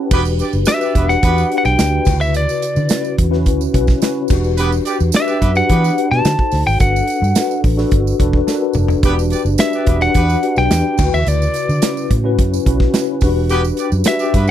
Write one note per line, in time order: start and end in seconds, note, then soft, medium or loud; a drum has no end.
0.00 0.14 C#4 medium
0.00 0.14 E4 medium
0.00 0.11 G4 medium
0.00 0.12 B4 loud
0.00 0.14 E5 medium
0.00 0.14 F#5 medium
0.00 0.14 G5 medium
0.00 0.13 A5 medium
0.10 0.40 E1 loud
0.10 0.23 B3 loud
0.10 0.53 D4 medium
0.10 0.53 F#4 medium
0.10 0.53 G4 medium
0.10 0.23 G4 loud
0.10 0.23 B4 loud
0.10 0.53 B4 loud
0.10 kick loud
0.10 crash medium
0.10 tambourine medium
0.25 tambourine soft
0.39 0.51 G4 medium
0.39 0.51 B4 medium
0.39 0.51 D5 medium
0.39 closed hi-hat medium
0.39 tambourine soft
0.53 0.63 F#1 medium
0.53 tambourine soft
0.65 0.98 D4 medium
0.65 0.98 F#4 medium
0.65 0.98 G4 medium
0.65 0.99 B4 medium
0.65 1.11 E5 medium
0.65 snare loud
0.65 closed hi-hat loud
0.65 tambourine medium
0.81 0.92 G4 medium
0.81 0.92 B4 medium
0.81 0.92 D5 medium
0.81 tambourine soft
0.95 1.15 E1 medium
0.95 1.07 B3 medium
0.95 1.07 G4 medium
0.95 1.07 B4 medium
0.95 kick medium
0.95 closed hi-hat medium
1.09 1.40 D4 medium
1.09 1.41 F#4 medium
1.09 1.40 G4 medium
1.09 1.41 B4 medium
1.09 1.57 F#5 medium
1.09 snare soft
1.09 tambourine soft
1.23 1.42 E2 loud
1.23 1.46 B3 loud
1.23 1.46 G4 loud
1.23 1.46 B4 loud
1.23 kick loud
1.23 closed hi-hat medium
1.38 tambourine soft
1.50 1.71 D4 medium
1.50 1.71 F#4 medium
1.50 1.72 G4 medium
1.50 1.72 B4 medium
1.50 closed hi-hat medium
1.58 1.65 F#5 medium
1.65 1.75 B1 loud
1.65 2.17 G5 loud
1.65 snare soft
1.65 tambourine soft
1.78 1.98 D2 medium
1.78 2.06 D4 medium
1.78 2.06 F#4 medium
1.78 2.07 G4 medium
1.78 2.05 B4 medium
1.78 snare loud
1.78 closed hi-hat medium
1.78 tambourine medium
2.05 2.45 D2 medium
2.05 2.73 C#3 medium
2.05 2.73 E4 medium
2.05 2.13 F4 medium
2.05 2.73 B4 medium
2.05 kick loud
2.05 snare soft
2.05 tambourine soft
2.05 crash medium
2.13 2.77 F#4 medium
2.21 2.34 E5 loud
2.21 tambourine soft
2.34 3.15 D5 medium
2.34 closed hi-hat medium
2.34 tambourine medium
2.49 tambourine medium
2.62 closed hi-hat medium
2.62 tambourine medium
2.76 2.86 D3 loud
2.76 tambourine soft
2.89 3.21 C#4 medium
2.89 3.21 E4 medium
2.89 3.21 F#4 medium
2.89 3.21 B4 medium
2.89 snare loud
2.89 closed hi-hat loud
2.89 tambourine medium
3.05 tambourine soft
3.18 3.46 E2 medium
3.18 kick medium
3.18 closed hi-hat medium
3.31 3.63 C#4 loud
3.31 3.63 E4 loud
3.31 3.63 F#4 medium
3.31 3.63 B4 loud
3.31 snare soft
3.46 3.66 D2 loud
3.46 kick medium
3.46 closed hi-hat medium
3.61 tambourine soft
3.74 3.93 B1 medium
3.74 3.95 C#4 medium
3.74 3.95 E4 medium
3.74 3.95 F#4 medium
3.74 3.95 B4 loud
3.74 kick medium
3.74 closed hi-hat medium
3.87 kick medium
3.87 snare soft
3.87 tambourine soft
4.02 4.30 C#4 medium
4.02 4.30 E4 medium
4.02 4.30 F#4 medium
4.02 4.30 B4 medium
4.02 snare loud
4.02 closed hi-hat medium
4.02 tambourine medium
4.28 4.78 E1 loud
4.28 4.97 D4 loud
4.28 4.97 F#4 medium
4.28 4.97 G4 medium
4.28 4.97 B4 medium
4.28 kick loud
4.28 snare soft
4.28 tambourine soft
4.28 crash medium
4.44 tambourine soft
4.57 4.69 B3 loud
4.57 4.69 G4 loud
4.57 4.69 B4 loud
4.57 closed hi-hat loud
4.57 tambourine soft
4.72 tambourine soft
4.85 4.97 G4 medium
4.85 4.97 B4 medium
4.85 4.97 D5 loud
4.85 closed hi-hat medium
4.85 tambourine medium
5.00 5.10 E2 medium
5.00 tambourine soft
5.12 5.44 D4 medium
5.12 5.45 F#4 medium
5.12 5.45 G4 medium
5.12 5.45 B4 medium
5.12 snare loud
5.12 closed hi-hat loud
5.12 tambourine medium
5.16 5.54 E5 medium
5.27 5.38 G4 medium
5.27 5.38 B4 medium
5.27 5.38 D5 loud
5.27 tambourine soft
5.41 5.61 F#2 medium
5.41 5.52 B3 medium
5.41 5.52 G4 medium
5.41 5.52 B4 loud
5.41 kick medium
5.41 closed hi-hat medium
5.55 5.86 D4 medium
5.55 5.86 F#4 medium
5.55 5.87 G4 medium
5.55 5.87 B4 medium
5.55 6.08 F#5 loud
5.55 tambourine soft
5.69 5.89 E3 loud
5.69 5.91 B3 medium
5.69 5.91 G4 loud
5.69 5.91 B4 loud
5.69 kick medium
5.69 closed hi-hat medium
5.84 tambourine soft
5.97 6.18 D4 medium
5.97 6.18 F#4 medium
5.97 6.18 G4 medium
5.97 6.18 B4 medium
5.97 closed hi-hat medium
6.11 6.21 B2 medium
6.11 6.63 A5 loud
6.11 snare soft
6.24 6.35 D3 loud
6.24 6.66 D#4 medium
6.24 6.67 F#4 medium
6.24 6.67 A4 medium
6.24 6.67 C5 medium
6.24 snare loud
6.24 closed hi-hat medium
6.24 tambourine medium
6.39 kick medium
6.51 6.62 D2 medium
6.51 snare soft
6.51 open hi-hat medium
6.51 tambourine soft
6.67 6.77 G#1 medium
6.67 6.80 G5 loud
6.67 tambourine soft
6.80 7.00 G1 loud
6.80 7.22 D4 medium
6.80 7.22 F#4 medium
6.80 7.22 A4 medium
6.80 7.22 B4 medium
6.80 7.60 F#5 medium
6.80 kick loud
6.80 closed hi-hat medium
6.80 tambourine medium
6.96 tambourine soft
7.07 closed hi-hat medium
7.07 tambourine soft
7.22 7.32 G2 loud
7.22 tambourine soft
7.35 7.67 D4 medium
7.35 7.67 F#4 medium
7.35 7.68 A4 medium
7.35 7.68 B4 medium
7.35 snare loud
7.35 closed hi-hat loud
7.35 tambourine loud
7.51 tambourine soft
7.64 7.83 A1 medium
7.64 kick medium
7.64 open hi-hat medium
7.77 8.09 D4 medium
7.77 8.09 F#4 medium
7.77 8.09 A4 medium
7.77 8.10 B4 loud
7.77 snare soft
7.77 tambourine soft
7.92 8.11 G1 medium
7.92 kick medium
7.92 closed hi-hat medium
8.07 tambourine soft
8.19 8.39 E1 medium
8.19 8.40 D4 medium
8.19 8.41 F#4 medium
8.19 8.41 A4 medium
8.19 8.41 B4 loud
8.19 kick medium
8.19 closed hi-hat medium
8.33 kick medium
8.47 8.89 D4 medium
8.47 8.89 F#4 medium
8.47 8.89 A4 medium
8.47 8.55 A#4 medium
8.47 snare medium
8.47 tambourine medium
8.55 8.93 B4 medium
8.73 8.95 F1 medium
8.73 mid tom medium
8.73 tambourine soft
8.88 floor tom medium
8.88 tambourine soft
9.03 9.32 E1 loud
9.03 9.15 B3 loud
9.03 9.45 D4 medium
9.03 9.45 F#4 medium
9.03 9.15 G4 loud
9.03 9.45 G4 medium
9.03 9.15 B4 loud
9.03 9.46 B4 medium
9.03 kick loud
9.03 closed hi-hat medium
9.03 tambourine medium
9.19 tambourine medium
9.30 9.43 G4 medium
9.30 9.42 B4 medium
9.30 9.43 D5 medium
9.30 closed hi-hat medium
9.30 tambourine medium
9.45 9.55 F#1 medium
9.45 tambourine soft
9.58 9.90 D4 medium
9.58 9.90 F#4 medium
9.58 9.91 G4 medium
9.58 9.91 B4 medium
9.58 10.03 E5 medium
9.58 snare loud
9.58 closed hi-hat loud
9.58 tambourine medium
9.73 9.85 G4 medium
9.73 9.85 B4 medium
9.73 9.85 D5 loud
9.73 tambourine soft
9.87 10.07 E1 medium
9.87 9.98 B3 medium
9.87 9.99 G4 medium
9.87 9.98 B4 medium
9.87 kick medium
9.87 closed hi-hat medium
10.00 10.32 D4 medium
10.00 10.32 F#4 medium
10.00 10.33 G4 medium
10.00 10.33 B4 medium
10.00 10.58 F#5 medium
10.00 snare soft
10.00 tambourine soft
10.14 10.35 E2 loud
10.14 10.38 B3 medium
10.14 10.38 G4 medium
10.14 10.38 B4 loud
10.14 kick medium
10.14 closed hi-hat medium
10.30 tambourine soft
10.43 10.64 D4 medium
10.43 10.64 F#4 medium
10.43 10.64 G4 medium
10.43 10.64 B4 medium
10.43 closed hi-hat medium
10.56 10.67 B1 medium
10.56 11.15 G5 loud
10.56 snare soft
10.56 tambourine soft
10.71 10.81 E2 medium
10.71 10.99 D4 medium
10.71 10.98 F#4 medium
10.71 10.99 G4 medium
10.71 10.98 B4 medium
10.71 snare loud
10.71 closed hi-hat loud
10.71 tambourine medium
10.98 11.09 D2 loud
10.98 11.66 C#3 medium
10.98 11.66 E4 medium
10.98 11.66 F#4 medium
10.98 11.66 B4 medium
10.98 kick loud
10.98 snare soft
10.98 tambourine soft
10.98 crash medium
11.13 11.23 D#2 medium
11.13 11.28 E5 loud
11.13 tambourine soft
11.27 11.46 D2 loud
11.27 12.11 D5 medium
11.27 closed hi-hat medium
11.27 tambourine soft
11.42 tambourine soft
11.54 closed hi-hat medium
11.54 tambourine medium
11.69 11.79 D3 medium
11.69 tambourine soft
11.82 12.14 C#4 medium
11.82 12.13 E4 medium
11.82 12.14 F#4 medium
11.82 12.14 B4 medium
11.82 snare loud
11.82 closed hi-hat loud
11.82 tambourine medium
11.97 tambourine soft
12.11 12.39 A2 medium
12.11 kick medium
12.11 closed hi-hat medium
12.24 12.55 C#4 loud
12.24 12.56 E4 medium
12.24 12.56 F#4 medium
12.24 12.56 B4 loud
12.39 12.58 F#2 medium
12.39 kick loud
12.39 closed hi-hat medium
12.54 tambourine medium
12.66 12.86 B1 medium
12.66 12.87 C#4 medium
12.66 12.87 E4 medium
12.66 12.88 F#4 medium
12.66 12.88 B4 medium
12.66 kick medium
12.66 closed hi-hat medium
12.80 kick medium
12.80 snare soft
12.94 13.22 C#4 medium
12.94 13.22 E4 medium
12.94 13.21 F#4 medium
12.94 13.22 B4 medium
12.94 snare loud
12.94 closed hi-hat medium
12.94 tambourine medium
13.21 13.70 E1 medium
13.21 13.89 D4 medium
13.21 13.89 F#4 medium
13.21 13.90 G4 medium
13.21 13.90 B4 loud
13.21 kick loud
13.21 open hi-hat medium
13.21 tambourine soft
13.49 13.61 B3 loud
13.49 13.61 G4 loud
13.49 13.61 B4 loud
13.49 closed hi-hat medium
13.49 tambourine medium
13.64 tambourine medium
13.77 13.90 G4 medium
13.77 13.90 B4 medium
13.77 13.90 D5 medium
13.77 closed hi-hat medium
13.77 tambourine medium
13.92 14.02 F#2 medium
13.92 tambourine soft
14.04 14.37 D4 medium
14.04 14.37 F#4 medium
14.04 14.37 G4 medium
14.04 14.37 B4 medium
14.04 14.50 E5 medium
14.04 snare loud
14.04 closed hi-hat loud
14.04 tambourine medium
14.19 14.31 G4 medium
14.19 14.31 B4 medium
14.19 14.31 D5 medium
14.19 tambourine soft
14.34 14.51 G2 medium
14.34 14.46 B3 medium
14.34 14.46 G4 medium
14.34 14.46 B4 loud
14.34 kick medium
14.34 closed hi-hat medium
14.47 14.51 D4 medium
14.47 14.51 F#4 medium
14.47 14.51 G4 medium
14.47 tambourine soft